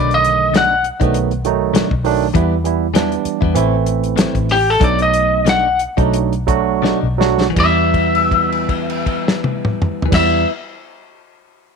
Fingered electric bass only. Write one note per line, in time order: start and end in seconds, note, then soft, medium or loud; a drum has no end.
0.00 0.90 B1 medium
1.01 1.81 B1 medium
1.91 2.30 B1 medium
2.35 3.15 E2 loud
3.25 muted fingered electric bass stroke soft
3.42 3.54 E2 loud
3.55 4.26 A1 loud
4.35 4.76 A1 medium
4.81 5.85 B1 loud
5.98 6.92 B1 medium
7.03 7.51 B1 medium
7.56 10.00 E2 medium
10.12 10.44 E2 medium